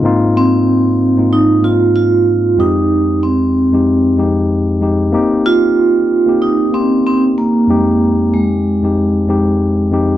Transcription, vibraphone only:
X:1
M:4/4
L:1/8
Q:"Swing 16ths" 1/4=94
K:Fm
V:1 name="Vibraphone"
z C3 E F F2 | E2 C3 z3 | z F3 E C C B,- | B,2 A,4- A, z |]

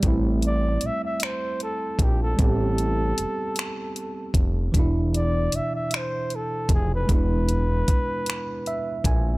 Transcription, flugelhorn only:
X:1
M:6/8
L:1/16
Q:3/8=51
K:Am
V:1 name="Flugelhorn"
z2 d2 e e c2 A2 G A | A8- A2 z2 | z2 d2 e e c2 A2 ^G B | B8- B2 z2 |]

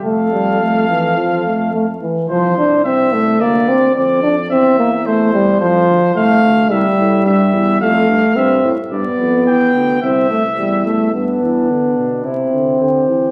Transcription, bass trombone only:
X:1
M:4/4
L:1/8
Q:1/4=108
K:F
V:1 name="Bass trombone" clef=bass
F,,6- F,, z | C,,4 D,,2 F,,2 | E,,4 F,, D,, C,, D,, | C,, A,, G,, E,, F,, G,, G,, A,, |
G,, F,, E,, D,, C,, z E,,2 | G,, E, D, =B,, C, D, D, E, |]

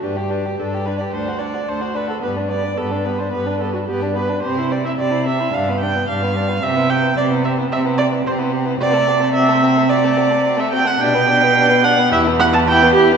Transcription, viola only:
X:1
M:4/4
L:1/16
Q:1/4=109
K:G
V:1 name="Viola"
G4 A2 B d c2 d2 c2 B A | B2 d2 A2 B c B2 A F G2 B2 | c2 d e d2 e2 =f2 g2 f4 | e2 g2 d2 e2 e2 d2 c2 z2 |
d4 e4 d4- d e g f | g6 f2 e2 f a g2 G2 |]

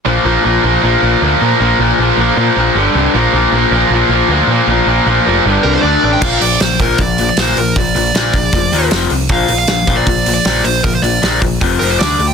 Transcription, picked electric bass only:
X:1
M:4/4
L:1/8
Q:1/4=156
K:Bb
V:1 name="Picked electric bass" clef=bass
B,,, B,,, B,,, B,,, B,,, B,,, D,, B,, | B,,, B,,, B,,, B,,, B,, B,,, G,,, C,, | B,,, B,,, B,,, B,,, B,,, B,,, D,, B,, | B,,, B,,, B,,, F,,, G,,, C,, D,, A,,, |
B,,, B,,, B,,, B,,, B,,,2 B,,, B,,, | B,,, B,,, B,,, B,,, F,,, E,, F,,, C,, | B,,, B,,, B,,, B,,, B,,,2 B,,, B,,, | B,,, B,,, B,,, B,,, F,,, F,,, D,, D,, |]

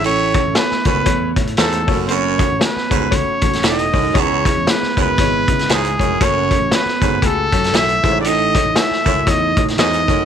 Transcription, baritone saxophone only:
X:1
M:4/4
L:1/16
Q:"Swing" 1/4=117
K:Alyd
V:1 name="Baritone saxophone" clef=bass
A,,3 z3 F,,2 z4 G,,2 F,,2 | F,,3 z3 G,,2 z4 A,,2 F,,2 | E,,3 z3 F,,2 z4 G,,2 F,,2 | F,,3 z3 G,,2 z4 A,,2 G,,2 |
A,,3 z3 F,,2 z4 G,,2 F,,2 |]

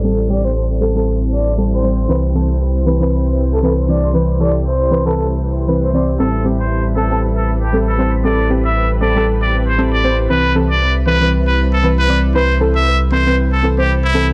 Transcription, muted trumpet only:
X:1
M:4/4
L:1/16
Q:"Swing 16ths" 1/4=117
K:C
V:1 name="Muted trumpet"
z16 | z16 | z16 | A2 z c2 z A2 z A z G z A2 z |
d2 z e2 z d2 z d z c z d2 z | B2 z d2 z B2 z B z A z B2 z | c2 z e2 z c2 z A z G z E2 z |]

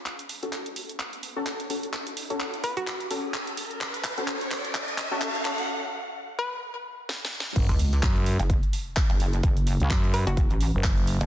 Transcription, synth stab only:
X:1
M:4/4
L:1/16
Q:"Swing 16ths" 1/4=128
K:F#m
V:1 name="Synth stab"
z3 [CFA]8 [CFA] z2 [CFA] z | z3 [CFA] z6 [CFA] z4 z | z3 [CFA]8 [CFA] z2 [CFA] z | z16 |
z16 | z16 |]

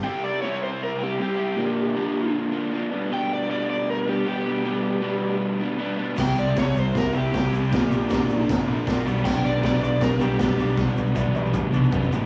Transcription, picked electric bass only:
X:1
M:4/4
L:1/8
Q:1/4=156
K:G
V:1 name="Picked electric bass" clef=bass
z8 | z8 | z8 | z8 |
C,, C,, C,, C,, C,, C,, C,, C,, | _B,,, B,,, B,,, B,,, G,,, B,,, B,,, =B,,, | B,,, B,,, B,,, B,,, B,,, B,,, B,,, B,,, | B,,, B,,, B,,, B,,, A,,, B,,, F,, A,,, |]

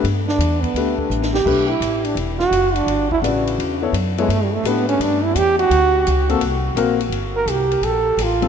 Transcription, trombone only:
X:1
M:4/4
L:1/8
Q:"Swing" 1/4=170
K:Edor
V:1 name="Trombone"
z D2 B,2 A, z G- | G E2 D z F2 D- | D E z4 z ^G, | (3A, G, A, B, C D E G F- |
F4 z4 | [K:Gm] z B G2 A2 F2 |]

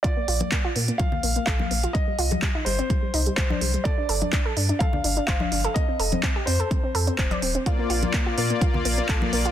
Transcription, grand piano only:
X:1
M:4/4
L:1/8
Q:1/4=126
K:Bb
V:1 name="Grand piano"
d4 f2 f2 | e3 c3 c2 | d4 f2 f2 | e3 c3 c2 |
z8 |]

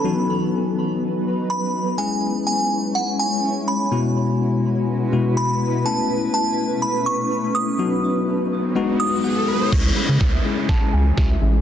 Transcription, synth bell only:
X:1
M:4/4
L:1/8
Q:1/4=124
K:C#m
V:1 name="Synth bell"
b z4 z b2 | g2 g2 f g2 b- | b z4 z b2 | a2 a2 b c'2 d'- |
d' z4 d'3 | c' b3 a g3 |]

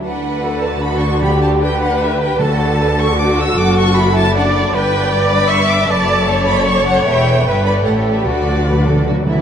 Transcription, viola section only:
X:1
M:3/4
L:1/8
Q:1/4=153
K:D
V:1 name="Viola section"
z2 A2 F2 | G2 B4 | A4 F2- | F4 d2 |
B2 d2 e2 | d2 c4- | c2 B2 A2 | F4- F z |]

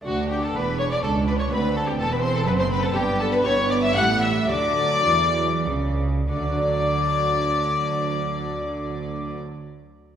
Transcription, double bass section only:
X:1
M:3/4
L:1/8
Q:1/4=110
K:D
V:1 name="Double bass section" clef=bass
D,,2 E,,,2 C,,2 | D,,2 E,,,2 F,,,2 | G,,,2 G,,,2 A,,,2 | D,,2 E,,2 C,,2 |
D,,6- | D,,6 |]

